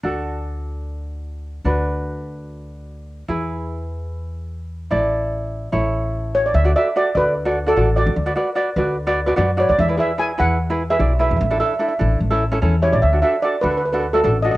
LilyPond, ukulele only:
\new Staff \with { instrumentName = "Ukulele" } { \time 4/4 \key d \major \tempo 4 = 148 <d' fis' a'>1 | <d' fis' b'>1 | <e' gis' b'>1 | <e' a' d''>2 <e' a' cis''>2 |
r16 <fis' a' d''>16 <fis' a' d''>16 r16 <fis' a' d''>16 r16 <fis' a' d''>8 r16 <fis' a' d''>16 r16 <fis' a' d''>16 <fis' a' d''>16 r16 <fis' a' d''>8 | r16 <fis' b' d''>16 <fis' b' d''>16 r16 <fis' b' d''>16 r16 <fis' b' d''>8 r16 <fis' b' d''>16 r16 <fis' b' d''>16 <fis' b' d''>16 r16 <fis' b' d''>8 | r16 <e' gis' b'>16 <e' gis' b'>16 r16 <e' gis' b'>16 r16 <e' gis' b'>8 r16 <e' gis' b'>16 r16 <e' gis' b'>16 <e' gis' d''>16 r16 <e' gis' b'>8 | r16 <d' e' a'>16 <d' e' a'>16 r16 <d' e' a'>16 r16 <d' e' a'>8 r16 <cis' e' a'>16 r16 <cis' e' a'>16 <cis' e' a'>16 r16 <cis' e' g'>8 |
r16 <d' fis' a'>16 <d' fis' a'>16 r16 <d' fis' a'>16 r16 <d' fis' a'>8 r16 <d' fis' a'>16 r16 <d' fis' a'>16 <d' fis' a'>16 r16 <d' fis' a'>8 | }